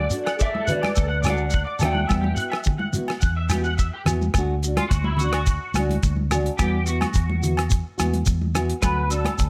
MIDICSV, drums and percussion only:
0, 0, Header, 1, 3, 480
1, 0, Start_track
1, 0, Key_signature, 2, "major"
1, 0, Tempo, 562324
1, 1792, Time_signature, 4, 2, 24, 8
1, 8105, End_track
2, 0, Start_track
2, 0, Title_t, "Shekere"
2, 88, Note_on_c, 9, 82, 84
2, 173, Note_off_c, 9, 82, 0
2, 231, Note_on_c, 9, 82, 25
2, 316, Note_off_c, 9, 82, 0
2, 339, Note_on_c, 9, 82, 65
2, 424, Note_off_c, 9, 82, 0
2, 576, Note_on_c, 9, 82, 84
2, 662, Note_off_c, 9, 82, 0
2, 817, Note_on_c, 9, 82, 72
2, 902, Note_off_c, 9, 82, 0
2, 1054, Note_on_c, 9, 82, 85
2, 1139, Note_off_c, 9, 82, 0
2, 1169, Note_on_c, 9, 82, 26
2, 1254, Note_off_c, 9, 82, 0
2, 1283, Note_on_c, 9, 82, 64
2, 1369, Note_off_c, 9, 82, 0
2, 1530, Note_on_c, 9, 82, 79
2, 1616, Note_off_c, 9, 82, 0
2, 1793, Note_on_c, 9, 82, 63
2, 1878, Note_off_c, 9, 82, 0
2, 2019, Note_on_c, 9, 82, 78
2, 2104, Note_off_c, 9, 82, 0
2, 2252, Note_on_c, 9, 82, 66
2, 2338, Note_off_c, 9, 82, 0
2, 2504, Note_on_c, 9, 82, 85
2, 2589, Note_off_c, 9, 82, 0
2, 2741, Note_on_c, 9, 82, 68
2, 2827, Note_off_c, 9, 82, 0
2, 2982, Note_on_c, 9, 82, 87
2, 3068, Note_off_c, 9, 82, 0
2, 3108, Note_on_c, 9, 82, 26
2, 3193, Note_off_c, 9, 82, 0
2, 3232, Note_on_c, 9, 82, 67
2, 3317, Note_off_c, 9, 82, 0
2, 3478, Note_on_c, 9, 82, 88
2, 3563, Note_off_c, 9, 82, 0
2, 3601, Note_on_c, 9, 82, 25
2, 3686, Note_off_c, 9, 82, 0
2, 3714, Note_on_c, 9, 82, 96
2, 3799, Note_off_c, 9, 82, 0
2, 3957, Note_on_c, 9, 82, 72
2, 4042, Note_off_c, 9, 82, 0
2, 4196, Note_on_c, 9, 82, 96
2, 4281, Note_off_c, 9, 82, 0
2, 4436, Note_on_c, 9, 82, 65
2, 4521, Note_off_c, 9, 82, 0
2, 4663, Note_on_c, 9, 82, 87
2, 4749, Note_off_c, 9, 82, 0
2, 4903, Note_on_c, 9, 82, 70
2, 4989, Note_off_c, 9, 82, 0
2, 5149, Note_on_c, 9, 82, 85
2, 5235, Note_off_c, 9, 82, 0
2, 5392, Note_on_c, 9, 82, 69
2, 5477, Note_off_c, 9, 82, 0
2, 5624, Note_on_c, 9, 82, 88
2, 5710, Note_off_c, 9, 82, 0
2, 5860, Note_on_c, 9, 82, 71
2, 5945, Note_off_c, 9, 82, 0
2, 6092, Note_on_c, 9, 82, 85
2, 6177, Note_off_c, 9, 82, 0
2, 6341, Note_on_c, 9, 82, 66
2, 6427, Note_off_c, 9, 82, 0
2, 6573, Note_on_c, 9, 82, 95
2, 6658, Note_off_c, 9, 82, 0
2, 6820, Note_on_c, 9, 82, 72
2, 6906, Note_off_c, 9, 82, 0
2, 7050, Note_on_c, 9, 82, 92
2, 7135, Note_off_c, 9, 82, 0
2, 7301, Note_on_c, 9, 82, 72
2, 7386, Note_off_c, 9, 82, 0
2, 7531, Note_on_c, 9, 82, 85
2, 7617, Note_off_c, 9, 82, 0
2, 7776, Note_on_c, 9, 82, 69
2, 7862, Note_off_c, 9, 82, 0
2, 8010, Note_on_c, 9, 82, 89
2, 8096, Note_off_c, 9, 82, 0
2, 8105, End_track
3, 0, Start_track
3, 0, Title_t, "Drums"
3, 107, Note_on_c, 9, 42, 49
3, 193, Note_off_c, 9, 42, 0
3, 225, Note_on_c, 9, 68, 59
3, 231, Note_on_c, 9, 37, 69
3, 311, Note_off_c, 9, 68, 0
3, 316, Note_off_c, 9, 37, 0
3, 351, Note_on_c, 9, 36, 82
3, 436, Note_off_c, 9, 36, 0
3, 468, Note_on_c, 9, 63, 61
3, 554, Note_off_c, 9, 63, 0
3, 593, Note_on_c, 9, 64, 64
3, 594, Note_on_c, 9, 42, 48
3, 678, Note_off_c, 9, 64, 0
3, 679, Note_off_c, 9, 42, 0
3, 708, Note_on_c, 9, 68, 62
3, 712, Note_on_c, 9, 63, 67
3, 722, Note_on_c, 9, 37, 63
3, 794, Note_off_c, 9, 68, 0
3, 798, Note_off_c, 9, 63, 0
3, 807, Note_off_c, 9, 37, 0
3, 835, Note_on_c, 9, 36, 89
3, 920, Note_off_c, 9, 36, 0
3, 1065, Note_on_c, 9, 68, 62
3, 1075, Note_on_c, 9, 63, 68
3, 1080, Note_on_c, 9, 37, 69
3, 1080, Note_on_c, 9, 42, 48
3, 1151, Note_off_c, 9, 68, 0
3, 1160, Note_off_c, 9, 63, 0
3, 1166, Note_off_c, 9, 37, 0
3, 1166, Note_off_c, 9, 42, 0
3, 1314, Note_on_c, 9, 36, 83
3, 1400, Note_off_c, 9, 36, 0
3, 1546, Note_on_c, 9, 68, 60
3, 1548, Note_on_c, 9, 64, 75
3, 1559, Note_on_c, 9, 37, 67
3, 1559, Note_on_c, 9, 42, 50
3, 1632, Note_off_c, 9, 68, 0
3, 1634, Note_off_c, 9, 64, 0
3, 1645, Note_off_c, 9, 37, 0
3, 1645, Note_off_c, 9, 42, 0
3, 1664, Note_on_c, 9, 63, 80
3, 1749, Note_off_c, 9, 63, 0
3, 1784, Note_on_c, 9, 68, 63
3, 1798, Note_on_c, 9, 36, 87
3, 1807, Note_on_c, 9, 37, 64
3, 1869, Note_off_c, 9, 68, 0
3, 1884, Note_off_c, 9, 36, 0
3, 1892, Note_off_c, 9, 37, 0
3, 1913, Note_on_c, 9, 63, 71
3, 1998, Note_off_c, 9, 63, 0
3, 2048, Note_on_c, 9, 42, 46
3, 2133, Note_off_c, 9, 42, 0
3, 2147, Note_on_c, 9, 68, 61
3, 2163, Note_on_c, 9, 37, 65
3, 2233, Note_off_c, 9, 68, 0
3, 2248, Note_off_c, 9, 37, 0
3, 2270, Note_on_c, 9, 64, 64
3, 2279, Note_on_c, 9, 36, 90
3, 2356, Note_off_c, 9, 64, 0
3, 2364, Note_off_c, 9, 36, 0
3, 2384, Note_on_c, 9, 63, 66
3, 2470, Note_off_c, 9, 63, 0
3, 2500, Note_on_c, 9, 64, 63
3, 2519, Note_on_c, 9, 42, 45
3, 2585, Note_off_c, 9, 64, 0
3, 2604, Note_off_c, 9, 42, 0
3, 2629, Note_on_c, 9, 68, 57
3, 2646, Note_on_c, 9, 37, 66
3, 2715, Note_off_c, 9, 68, 0
3, 2732, Note_off_c, 9, 37, 0
3, 2757, Note_on_c, 9, 36, 90
3, 2843, Note_off_c, 9, 36, 0
3, 2984, Note_on_c, 9, 63, 62
3, 2985, Note_on_c, 9, 68, 60
3, 2999, Note_on_c, 9, 37, 70
3, 2999, Note_on_c, 9, 42, 51
3, 3069, Note_off_c, 9, 63, 0
3, 3070, Note_off_c, 9, 68, 0
3, 3084, Note_off_c, 9, 37, 0
3, 3084, Note_off_c, 9, 42, 0
3, 3235, Note_on_c, 9, 36, 75
3, 3320, Note_off_c, 9, 36, 0
3, 3462, Note_on_c, 9, 64, 73
3, 3467, Note_on_c, 9, 37, 64
3, 3467, Note_on_c, 9, 42, 49
3, 3473, Note_on_c, 9, 68, 65
3, 3547, Note_off_c, 9, 64, 0
3, 3553, Note_off_c, 9, 37, 0
3, 3553, Note_off_c, 9, 42, 0
3, 3558, Note_off_c, 9, 68, 0
3, 3597, Note_on_c, 9, 63, 67
3, 3682, Note_off_c, 9, 63, 0
3, 3703, Note_on_c, 9, 37, 71
3, 3703, Note_on_c, 9, 42, 50
3, 3708, Note_on_c, 9, 68, 66
3, 3711, Note_on_c, 9, 36, 90
3, 3789, Note_off_c, 9, 37, 0
3, 3789, Note_off_c, 9, 42, 0
3, 3793, Note_off_c, 9, 68, 0
3, 3796, Note_off_c, 9, 36, 0
3, 3951, Note_on_c, 9, 42, 52
3, 4037, Note_off_c, 9, 42, 0
3, 4069, Note_on_c, 9, 63, 70
3, 4071, Note_on_c, 9, 37, 63
3, 4071, Note_on_c, 9, 42, 48
3, 4073, Note_on_c, 9, 68, 63
3, 4154, Note_off_c, 9, 63, 0
3, 4157, Note_off_c, 9, 37, 0
3, 4157, Note_off_c, 9, 42, 0
3, 4159, Note_off_c, 9, 68, 0
3, 4192, Note_on_c, 9, 36, 89
3, 4192, Note_on_c, 9, 42, 54
3, 4277, Note_off_c, 9, 42, 0
3, 4278, Note_off_c, 9, 36, 0
3, 4305, Note_on_c, 9, 63, 67
3, 4390, Note_off_c, 9, 63, 0
3, 4411, Note_on_c, 9, 64, 69
3, 4430, Note_on_c, 9, 42, 47
3, 4496, Note_off_c, 9, 64, 0
3, 4515, Note_off_c, 9, 42, 0
3, 4547, Note_on_c, 9, 37, 68
3, 4547, Note_on_c, 9, 42, 47
3, 4556, Note_on_c, 9, 68, 59
3, 4632, Note_off_c, 9, 37, 0
3, 4632, Note_off_c, 9, 42, 0
3, 4642, Note_off_c, 9, 68, 0
3, 4663, Note_on_c, 9, 42, 50
3, 4672, Note_on_c, 9, 36, 93
3, 4749, Note_off_c, 9, 42, 0
3, 4757, Note_off_c, 9, 36, 0
3, 4901, Note_on_c, 9, 63, 70
3, 4911, Note_on_c, 9, 68, 63
3, 4916, Note_on_c, 9, 37, 71
3, 4916, Note_on_c, 9, 42, 51
3, 4986, Note_off_c, 9, 63, 0
3, 4997, Note_off_c, 9, 68, 0
3, 5001, Note_off_c, 9, 37, 0
3, 5001, Note_off_c, 9, 42, 0
3, 5032, Note_on_c, 9, 63, 79
3, 5042, Note_on_c, 9, 42, 45
3, 5117, Note_off_c, 9, 63, 0
3, 5127, Note_off_c, 9, 42, 0
3, 5144, Note_on_c, 9, 42, 42
3, 5150, Note_on_c, 9, 36, 86
3, 5229, Note_off_c, 9, 42, 0
3, 5235, Note_off_c, 9, 36, 0
3, 5260, Note_on_c, 9, 63, 63
3, 5345, Note_off_c, 9, 63, 0
3, 5387, Note_on_c, 9, 37, 76
3, 5387, Note_on_c, 9, 42, 52
3, 5389, Note_on_c, 9, 64, 80
3, 5392, Note_on_c, 9, 68, 68
3, 5472, Note_off_c, 9, 37, 0
3, 5472, Note_off_c, 9, 42, 0
3, 5474, Note_off_c, 9, 64, 0
3, 5477, Note_off_c, 9, 68, 0
3, 5514, Note_on_c, 9, 42, 50
3, 5600, Note_off_c, 9, 42, 0
3, 5627, Note_on_c, 9, 37, 67
3, 5627, Note_on_c, 9, 42, 49
3, 5627, Note_on_c, 9, 68, 68
3, 5628, Note_on_c, 9, 36, 94
3, 5712, Note_off_c, 9, 37, 0
3, 5712, Note_off_c, 9, 42, 0
3, 5712, Note_off_c, 9, 68, 0
3, 5713, Note_off_c, 9, 36, 0
3, 5865, Note_on_c, 9, 42, 48
3, 5951, Note_off_c, 9, 42, 0
3, 5983, Note_on_c, 9, 68, 69
3, 5989, Note_on_c, 9, 63, 73
3, 5993, Note_on_c, 9, 37, 69
3, 5993, Note_on_c, 9, 42, 47
3, 6069, Note_off_c, 9, 68, 0
3, 6075, Note_off_c, 9, 63, 0
3, 6078, Note_off_c, 9, 37, 0
3, 6078, Note_off_c, 9, 42, 0
3, 6108, Note_on_c, 9, 36, 90
3, 6110, Note_on_c, 9, 42, 49
3, 6193, Note_off_c, 9, 36, 0
3, 6196, Note_off_c, 9, 42, 0
3, 6227, Note_on_c, 9, 63, 69
3, 6313, Note_off_c, 9, 63, 0
3, 6345, Note_on_c, 9, 64, 73
3, 6351, Note_on_c, 9, 42, 49
3, 6430, Note_off_c, 9, 64, 0
3, 6436, Note_off_c, 9, 42, 0
3, 6464, Note_on_c, 9, 68, 65
3, 6476, Note_on_c, 9, 37, 66
3, 6476, Note_on_c, 9, 42, 50
3, 6550, Note_off_c, 9, 68, 0
3, 6562, Note_off_c, 9, 37, 0
3, 6562, Note_off_c, 9, 42, 0
3, 6587, Note_on_c, 9, 36, 91
3, 6587, Note_on_c, 9, 42, 50
3, 6673, Note_off_c, 9, 36, 0
3, 6673, Note_off_c, 9, 42, 0
3, 6824, Note_on_c, 9, 63, 70
3, 6824, Note_on_c, 9, 68, 64
3, 6826, Note_on_c, 9, 37, 73
3, 6826, Note_on_c, 9, 42, 55
3, 6909, Note_off_c, 9, 63, 0
3, 6910, Note_off_c, 9, 68, 0
3, 6912, Note_off_c, 9, 37, 0
3, 6912, Note_off_c, 9, 42, 0
3, 6942, Note_on_c, 9, 63, 68
3, 6945, Note_on_c, 9, 42, 49
3, 7028, Note_off_c, 9, 63, 0
3, 7030, Note_off_c, 9, 42, 0
3, 7057, Note_on_c, 9, 42, 48
3, 7062, Note_on_c, 9, 36, 84
3, 7143, Note_off_c, 9, 42, 0
3, 7147, Note_off_c, 9, 36, 0
3, 7184, Note_on_c, 9, 63, 57
3, 7269, Note_off_c, 9, 63, 0
3, 7294, Note_on_c, 9, 64, 71
3, 7301, Note_on_c, 9, 37, 71
3, 7301, Note_on_c, 9, 42, 57
3, 7302, Note_on_c, 9, 68, 66
3, 7380, Note_off_c, 9, 64, 0
3, 7386, Note_off_c, 9, 37, 0
3, 7386, Note_off_c, 9, 42, 0
3, 7387, Note_off_c, 9, 68, 0
3, 7423, Note_on_c, 9, 42, 56
3, 7508, Note_off_c, 9, 42, 0
3, 7533, Note_on_c, 9, 37, 70
3, 7533, Note_on_c, 9, 42, 58
3, 7540, Note_on_c, 9, 36, 89
3, 7545, Note_on_c, 9, 68, 66
3, 7618, Note_off_c, 9, 37, 0
3, 7618, Note_off_c, 9, 42, 0
3, 7625, Note_off_c, 9, 36, 0
3, 7630, Note_off_c, 9, 68, 0
3, 7771, Note_on_c, 9, 42, 53
3, 7856, Note_off_c, 9, 42, 0
3, 7892, Note_on_c, 9, 63, 69
3, 7898, Note_on_c, 9, 68, 61
3, 7902, Note_on_c, 9, 37, 72
3, 7902, Note_on_c, 9, 42, 52
3, 7977, Note_off_c, 9, 63, 0
3, 7983, Note_off_c, 9, 68, 0
3, 7987, Note_off_c, 9, 37, 0
3, 7987, Note_off_c, 9, 42, 0
3, 8017, Note_on_c, 9, 42, 54
3, 8021, Note_on_c, 9, 36, 92
3, 8103, Note_off_c, 9, 42, 0
3, 8105, Note_off_c, 9, 36, 0
3, 8105, End_track
0, 0, End_of_file